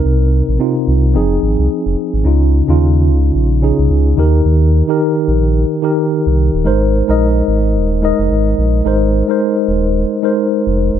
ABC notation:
X:1
M:4/4
L:1/16
Q:"Swing 16ths" 1/4=109
K:Ab
V:1 name="Tine electric piano"
[C,CEB]3 z [C,CEF]4 [F,CEA]6 z2 | [D,DEF]2 z [D,DEF]6 z [D,DEA]4 [E,EGB]2- | [E,EGB]2 z [E,EGB]6 z [E,EGB]4- [E,EGB] z | [A,EBc]2 z [A,EBe]6 z [A,EBe]4- [A,EBe] z |
[A,EBc]2 z [A,EBc]6 z [A,EBc]4- [A,EBc] z |]
V:2 name="Sub bass" clef=bass
C,,3 B,,, z2 C,,2 F,,,2 A,,, C,, z F,,, z A,,, | D,,3 E,,3 D,,2 B,,,3 C,, D,,2 E,,2 | E,,3 z3 B,,,3 z4 C,,2 E,,, | A,,,3 B,,,3 A,,,2 E,,,3 F,,, A,,,2 B,,,2 |
A,,,3 z3 E,,,3 z4 F,,,2 E,,, |]